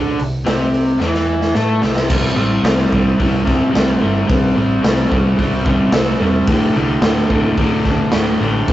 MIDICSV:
0, 0, Header, 1, 4, 480
1, 0, Start_track
1, 0, Tempo, 547445
1, 1840, Time_signature, 4, 2, 24, 8
1, 7653, End_track
2, 0, Start_track
2, 0, Title_t, "Overdriven electric guitar"
2, 0, Program_c, 0, 29
2, 0, Note_on_c, 0, 50, 83
2, 0, Note_on_c, 0, 62, 104
2, 154, Note_off_c, 0, 50, 0
2, 160, Note_on_c, 0, 48, 75
2, 162, Note_off_c, 0, 62, 0
2, 354, Note_off_c, 0, 48, 0
2, 390, Note_on_c, 0, 48, 84
2, 402, Note_on_c, 0, 60, 100
2, 868, Note_on_c, 0, 52, 97
2, 869, Note_off_c, 0, 48, 0
2, 875, Note_off_c, 0, 60, 0
2, 880, Note_on_c, 0, 64, 111
2, 1347, Note_off_c, 0, 52, 0
2, 1353, Note_off_c, 0, 64, 0
2, 1355, Note_on_c, 0, 57, 93
2, 1368, Note_on_c, 0, 69, 109
2, 1590, Note_on_c, 0, 48, 97
2, 1591, Note_off_c, 0, 57, 0
2, 1597, Note_off_c, 0, 69, 0
2, 1599, Note_on_c, 0, 60, 99
2, 1813, Note_off_c, 0, 48, 0
2, 1824, Note_on_c, 0, 48, 100
2, 1826, Note_off_c, 0, 60, 0
2, 1832, Note_on_c, 0, 55, 98
2, 1837, Note_on_c, 0, 60, 99
2, 2056, Note_off_c, 0, 48, 0
2, 2060, Note_on_c, 0, 48, 92
2, 2068, Note_off_c, 0, 55, 0
2, 2071, Note_on_c, 0, 55, 93
2, 2074, Note_off_c, 0, 60, 0
2, 2077, Note_on_c, 0, 60, 102
2, 2302, Note_off_c, 0, 48, 0
2, 2306, Note_on_c, 0, 48, 87
2, 2313, Note_off_c, 0, 55, 0
2, 2317, Note_on_c, 0, 55, 95
2, 2319, Note_off_c, 0, 60, 0
2, 2322, Note_on_c, 0, 60, 100
2, 2543, Note_off_c, 0, 48, 0
2, 2547, Note_on_c, 0, 48, 89
2, 2555, Note_off_c, 0, 55, 0
2, 2557, Note_off_c, 0, 60, 0
2, 2559, Note_on_c, 0, 55, 99
2, 2561, Note_on_c, 0, 60, 90
2, 2769, Note_off_c, 0, 48, 0
2, 2780, Note_on_c, 0, 48, 99
2, 2782, Note_off_c, 0, 55, 0
2, 2789, Note_off_c, 0, 60, 0
2, 2793, Note_on_c, 0, 55, 112
2, 2799, Note_on_c, 0, 60, 98
2, 3006, Note_off_c, 0, 48, 0
2, 3012, Note_off_c, 0, 55, 0
2, 3017, Note_on_c, 0, 48, 86
2, 3023, Note_on_c, 0, 55, 81
2, 3025, Note_off_c, 0, 60, 0
2, 3036, Note_on_c, 0, 60, 99
2, 3242, Note_off_c, 0, 48, 0
2, 3252, Note_off_c, 0, 55, 0
2, 3252, Note_on_c, 0, 48, 98
2, 3259, Note_off_c, 0, 60, 0
2, 3263, Note_on_c, 0, 55, 106
2, 3269, Note_on_c, 0, 60, 106
2, 3490, Note_off_c, 0, 48, 0
2, 3498, Note_off_c, 0, 55, 0
2, 3500, Note_on_c, 0, 48, 94
2, 3503, Note_off_c, 0, 60, 0
2, 3509, Note_on_c, 0, 55, 95
2, 3514, Note_on_c, 0, 60, 97
2, 3729, Note_off_c, 0, 48, 0
2, 3739, Note_on_c, 0, 48, 95
2, 3740, Note_off_c, 0, 55, 0
2, 3744, Note_off_c, 0, 60, 0
2, 3750, Note_on_c, 0, 55, 108
2, 3755, Note_on_c, 0, 60, 102
2, 3982, Note_off_c, 0, 48, 0
2, 3987, Note_off_c, 0, 55, 0
2, 3993, Note_on_c, 0, 48, 88
2, 3996, Note_off_c, 0, 60, 0
2, 3998, Note_on_c, 0, 55, 89
2, 4006, Note_on_c, 0, 60, 102
2, 4213, Note_off_c, 0, 48, 0
2, 4223, Note_off_c, 0, 55, 0
2, 4223, Note_on_c, 0, 48, 93
2, 4230, Note_off_c, 0, 60, 0
2, 4234, Note_on_c, 0, 55, 90
2, 4240, Note_on_c, 0, 60, 99
2, 4457, Note_off_c, 0, 48, 0
2, 4466, Note_off_c, 0, 55, 0
2, 4467, Note_on_c, 0, 48, 92
2, 4475, Note_off_c, 0, 60, 0
2, 4477, Note_on_c, 0, 55, 94
2, 4486, Note_on_c, 0, 60, 91
2, 4701, Note_off_c, 0, 48, 0
2, 4709, Note_off_c, 0, 55, 0
2, 4712, Note_on_c, 0, 48, 106
2, 4718, Note_off_c, 0, 60, 0
2, 4720, Note_on_c, 0, 55, 105
2, 4728, Note_on_c, 0, 60, 114
2, 4940, Note_off_c, 0, 48, 0
2, 4950, Note_on_c, 0, 48, 89
2, 4956, Note_off_c, 0, 55, 0
2, 4959, Note_off_c, 0, 60, 0
2, 4967, Note_on_c, 0, 55, 89
2, 4970, Note_on_c, 0, 60, 95
2, 5189, Note_off_c, 0, 48, 0
2, 5197, Note_off_c, 0, 55, 0
2, 5199, Note_on_c, 0, 48, 102
2, 5206, Note_off_c, 0, 60, 0
2, 5207, Note_on_c, 0, 55, 107
2, 5216, Note_on_c, 0, 60, 106
2, 5420, Note_off_c, 0, 48, 0
2, 5428, Note_off_c, 0, 55, 0
2, 5431, Note_on_c, 0, 48, 92
2, 5437, Note_off_c, 0, 60, 0
2, 5438, Note_on_c, 0, 55, 103
2, 5448, Note_on_c, 0, 60, 96
2, 5661, Note_off_c, 0, 48, 0
2, 5665, Note_off_c, 0, 55, 0
2, 5670, Note_off_c, 0, 60, 0
2, 5676, Note_on_c, 0, 38, 98
2, 5683, Note_on_c, 0, 45, 109
2, 5691, Note_on_c, 0, 50, 111
2, 5910, Note_off_c, 0, 38, 0
2, 5913, Note_off_c, 0, 45, 0
2, 5914, Note_on_c, 0, 38, 97
2, 5924, Note_on_c, 0, 45, 97
2, 5933, Note_off_c, 0, 50, 0
2, 5936, Note_on_c, 0, 50, 101
2, 6146, Note_off_c, 0, 38, 0
2, 6147, Note_off_c, 0, 45, 0
2, 6149, Note_on_c, 0, 38, 100
2, 6157, Note_on_c, 0, 45, 102
2, 6162, Note_off_c, 0, 50, 0
2, 6165, Note_on_c, 0, 50, 100
2, 6384, Note_off_c, 0, 38, 0
2, 6387, Note_off_c, 0, 45, 0
2, 6387, Note_on_c, 0, 38, 97
2, 6398, Note_on_c, 0, 45, 93
2, 6403, Note_off_c, 0, 50, 0
2, 6407, Note_on_c, 0, 50, 94
2, 6626, Note_off_c, 0, 38, 0
2, 6636, Note_off_c, 0, 45, 0
2, 6637, Note_on_c, 0, 38, 105
2, 6639, Note_off_c, 0, 50, 0
2, 6647, Note_on_c, 0, 45, 111
2, 6650, Note_on_c, 0, 50, 106
2, 6865, Note_off_c, 0, 38, 0
2, 6872, Note_off_c, 0, 45, 0
2, 6876, Note_on_c, 0, 38, 91
2, 6878, Note_off_c, 0, 50, 0
2, 6882, Note_on_c, 0, 45, 96
2, 6888, Note_on_c, 0, 50, 95
2, 7104, Note_off_c, 0, 38, 0
2, 7111, Note_off_c, 0, 45, 0
2, 7115, Note_on_c, 0, 38, 109
2, 7122, Note_on_c, 0, 45, 101
2, 7126, Note_off_c, 0, 50, 0
2, 7136, Note_on_c, 0, 50, 117
2, 7351, Note_off_c, 0, 38, 0
2, 7360, Note_off_c, 0, 45, 0
2, 7362, Note_on_c, 0, 38, 93
2, 7368, Note_off_c, 0, 50, 0
2, 7370, Note_on_c, 0, 45, 96
2, 7379, Note_on_c, 0, 50, 99
2, 7594, Note_off_c, 0, 38, 0
2, 7600, Note_off_c, 0, 45, 0
2, 7605, Note_on_c, 0, 38, 102
2, 7610, Note_off_c, 0, 50, 0
2, 7610, Note_on_c, 0, 45, 107
2, 7621, Note_on_c, 0, 50, 111
2, 7653, Note_off_c, 0, 38, 0
2, 7653, Note_off_c, 0, 45, 0
2, 7653, Note_off_c, 0, 50, 0
2, 7653, End_track
3, 0, Start_track
3, 0, Title_t, "Picked electric bass"
3, 0, Program_c, 1, 34
3, 0, Note_on_c, 1, 38, 87
3, 148, Note_off_c, 1, 38, 0
3, 167, Note_on_c, 1, 36, 78
3, 388, Note_off_c, 1, 36, 0
3, 408, Note_on_c, 1, 36, 89
3, 851, Note_off_c, 1, 36, 0
3, 875, Note_on_c, 1, 40, 92
3, 1324, Note_off_c, 1, 40, 0
3, 1360, Note_on_c, 1, 45, 89
3, 1584, Note_off_c, 1, 45, 0
3, 1598, Note_on_c, 1, 36, 86
3, 1822, Note_off_c, 1, 36, 0
3, 1839, Note_on_c, 1, 36, 101
3, 2016, Note_off_c, 1, 36, 0
3, 2070, Note_on_c, 1, 33, 90
3, 2250, Note_off_c, 1, 33, 0
3, 2306, Note_on_c, 1, 36, 86
3, 2488, Note_off_c, 1, 36, 0
3, 2558, Note_on_c, 1, 36, 97
3, 2735, Note_off_c, 1, 36, 0
3, 2804, Note_on_c, 1, 36, 92
3, 3156, Note_off_c, 1, 36, 0
3, 3281, Note_on_c, 1, 36, 90
3, 3457, Note_off_c, 1, 36, 0
3, 3525, Note_on_c, 1, 31, 89
3, 3699, Note_off_c, 1, 31, 0
3, 3765, Note_on_c, 1, 36, 101
3, 3939, Note_off_c, 1, 36, 0
3, 4003, Note_on_c, 1, 33, 94
3, 4178, Note_off_c, 1, 33, 0
3, 4244, Note_on_c, 1, 36, 90
3, 4419, Note_off_c, 1, 36, 0
3, 4487, Note_on_c, 1, 36, 99
3, 4661, Note_off_c, 1, 36, 0
3, 4721, Note_on_c, 1, 36, 90
3, 5074, Note_off_c, 1, 36, 0
3, 5193, Note_on_c, 1, 36, 92
3, 5372, Note_off_c, 1, 36, 0
3, 5438, Note_on_c, 1, 28, 90
3, 5615, Note_off_c, 1, 28, 0
3, 5674, Note_on_c, 1, 26, 104
3, 5853, Note_off_c, 1, 26, 0
3, 5923, Note_on_c, 1, 36, 93
3, 6099, Note_off_c, 1, 36, 0
3, 6154, Note_on_c, 1, 26, 87
3, 6334, Note_off_c, 1, 26, 0
3, 6398, Note_on_c, 1, 26, 96
3, 6577, Note_off_c, 1, 26, 0
3, 6639, Note_on_c, 1, 26, 92
3, 6996, Note_off_c, 1, 26, 0
3, 7131, Note_on_c, 1, 26, 93
3, 7306, Note_off_c, 1, 26, 0
3, 7367, Note_on_c, 1, 33, 92
3, 7544, Note_off_c, 1, 33, 0
3, 7615, Note_on_c, 1, 26, 102
3, 7653, Note_off_c, 1, 26, 0
3, 7653, End_track
4, 0, Start_track
4, 0, Title_t, "Drums"
4, 169, Note_on_c, 9, 46, 54
4, 257, Note_off_c, 9, 46, 0
4, 408, Note_on_c, 9, 38, 120
4, 408, Note_on_c, 9, 46, 75
4, 496, Note_off_c, 9, 38, 0
4, 496, Note_off_c, 9, 46, 0
4, 652, Note_on_c, 9, 46, 54
4, 739, Note_off_c, 9, 46, 0
4, 879, Note_on_c, 9, 38, 56
4, 967, Note_off_c, 9, 38, 0
4, 1001, Note_on_c, 9, 38, 56
4, 1089, Note_off_c, 9, 38, 0
4, 1239, Note_on_c, 9, 38, 66
4, 1327, Note_off_c, 9, 38, 0
4, 1356, Note_on_c, 9, 38, 78
4, 1444, Note_off_c, 9, 38, 0
4, 1595, Note_on_c, 9, 38, 91
4, 1683, Note_off_c, 9, 38, 0
4, 1721, Note_on_c, 9, 38, 84
4, 1808, Note_off_c, 9, 38, 0
4, 1840, Note_on_c, 9, 49, 125
4, 1841, Note_on_c, 9, 36, 124
4, 1928, Note_off_c, 9, 49, 0
4, 1929, Note_off_c, 9, 36, 0
4, 2322, Note_on_c, 9, 38, 114
4, 2322, Note_on_c, 9, 46, 66
4, 2410, Note_off_c, 9, 38, 0
4, 2410, Note_off_c, 9, 46, 0
4, 2447, Note_on_c, 9, 38, 30
4, 2534, Note_off_c, 9, 38, 0
4, 2565, Note_on_c, 9, 36, 94
4, 2652, Note_off_c, 9, 36, 0
4, 2805, Note_on_c, 9, 36, 86
4, 2806, Note_on_c, 9, 46, 54
4, 2893, Note_off_c, 9, 36, 0
4, 2894, Note_off_c, 9, 46, 0
4, 3046, Note_on_c, 9, 36, 91
4, 3053, Note_on_c, 9, 38, 34
4, 3134, Note_off_c, 9, 36, 0
4, 3141, Note_off_c, 9, 38, 0
4, 3292, Note_on_c, 9, 38, 106
4, 3292, Note_on_c, 9, 46, 58
4, 3379, Note_off_c, 9, 38, 0
4, 3379, Note_off_c, 9, 46, 0
4, 3766, Note_on_c, 9, 36, 116
4, 3772, Note_on_c, 9, 46, 58
4, 3854, Note_off_c, 9, 36, 0
4, 3859, Note_off_c, 9, 46, 0
4, 4248, Note_on_c, 9, 38, 118
4, 4248, Note_on_c, 9, 46, 66
4, 4335, Note_off_c, 9, 38, 0
4, 4335, Note_off_c, 9, 46, 0
4, 4486, Note_on_c, 9, 36, 88
4, 4574, Note_off_c, 9, 36, 0
4, 4724, Note_on_c, 9, 36, 85
4, 4728, Note_on_c, 9, 46, 63
4, 4812, Note_off_c, 9, 36, 0
4, 4816, Note_off_c, 9, 46, 0
4, 4961, Note_on_c, 9, 36, 93
4, 5049, Note_off_c, 9, 36, 0
4, 5195, Note_on_c, 9, 38, 114
4, 5195, Note_on_c, 9, 46, 67
4, 5282, Note_off_c, 9, 38, 0
4, 5282, Note_off_c, 9, 46, 0
4, 5674, Note_on_c, 9, 46, 69
4, 5678, Note_on_c, 9, 36, 117
4, 5762, Note_off_c, 9, 46, 0
4, 5765, Note_off_c, 9, 36, 0
4, 6155, Note_on_c, 9, 38, 127
4, 6155, Note_on_c, 9, 46, 72
4, 6243, Note_off_c, 9, 38, 0
4, 6243, Note_off_c, 9, 46, 0
4, 6281, Note_on_c, 9, 38, 33
4, 6369, Note_off_c, 9, 38, 0
4, 6402, Note_on_c, 9, 36, 90
4, 6490, Note_off_c, 9, 36, 0
4, 6640, Note_on_c, 9, 46, 63
4, 6644, Note_on_c, 9, 36, 89
4, 6728, Note_off_c, 9, 46, 0
4, 6731, Note_off_c, 9, 36, 0
4, 6883, Note_on_c, 9, 38, 33
4, 6885, Note_on_c, 9, 36, 85
4, 6971, Note_off_c, 9, 38, 0
4, 6973, Note_off_c, 9, 36, 0
4, 7117, Note_on_c, 9, 38, 106
4, 7117, Note_on_c, 9, 46, 61
4, 7205, Note_off_c, 9, 38, 0
4, 7205, Note_off_c, 9, 46, 0
4, 7609, Note_on_c, 9, 46, 65
4, 7613, Note_on_c, 9, 36, 122
4, 7653, Note_off_c, 9, 36, 0
4, 7653, Note_off_c, 9, 46, 0
4, 7653, End_track
0, 0, End_of_file